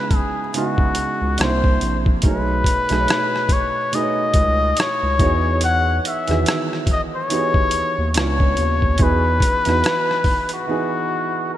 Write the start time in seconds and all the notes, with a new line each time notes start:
Already playing: C#3 G#3 B3 D#4 E4 F#4 G#4 B4
0.11 kick, closed hi-hat
0.15 G#4
0.54 C#3 G#3 B3 D#4 E4 F#4, closed hi-hat
0.78 kick
0.95 C#2, closed hi-hat
1.22 C#2
1.38 C2 C3 A#3 D4 C5, cross-stick, closed hi-hat
1.42 E4 C5
1.64 kick
1.81 A#1, closed hi-hat
2.06 kick
2.22 B1 B2 A3 D#4, kick, closed hi-hat
2.26 G#4 B4 C#5
2.64 kick, closed hi-hat
2.89 B1 B2 A3 D#4 G#4, cross-stick, closed hi-hat
2.93 B4
3.00 C#5
3.08 cross-stick, closed hi-hat
3.36 cross-stick
3.49 C#5, kick, closed hi-hat
3.92 B2 A3 D#4 G#4 D#5, closed hi-hat
3.96 B4
4.03 C#5
4.34 C#2, kick, closed hi-hat
4.77 C#5, cross-stick, closed hi-hat
5.03 C#2
5.19 E2 E3 B3 D#4 F#4 G#4, kick, closed hi-hat
5.23 C#5
5.61 F#5, closed hi-hat
6.05 E5, closed hi-hat
6.27 E2 D#3 E3 B3 F#4 G#4, cross-stick, closed hi-hat
6.32 E5
6.46 cross-stick, closed hi-hat
6.73 cross-stick
6.87 kick, closed hi-hat
6.92 D#5
7.16 C#5
7.29 E3 B3 D#4 F#4 G4, closed hi-hat
7.33 C#5
7.39 G#4
7.54 kick
7.71 D#2, closed hi-hat
7.98 D#2
8.14 C#2 C#3 B3 D4 F4, cross-stick, closed hi-hat
8.19 C#5
8.40 kick
8.57 D#2, closed hi-hat
8.82 kick
8.98 E2 E3 B3 D#4 F#4, kick, closed hi-hat
9.02 G#4 B4
9.40 kick, closed hi-hat
9.65 E2 E3 B3 D#4 F#4, cross-stick, closed hi-hat
9.69 B4
9.84 cross-stick, closed hi-hat
10.11 cross-stick
10.24 kick, open hi-hat
10.49 closed hi-hat
10.54 F#4
10.67 E3 B3 D#4 F#4 G#4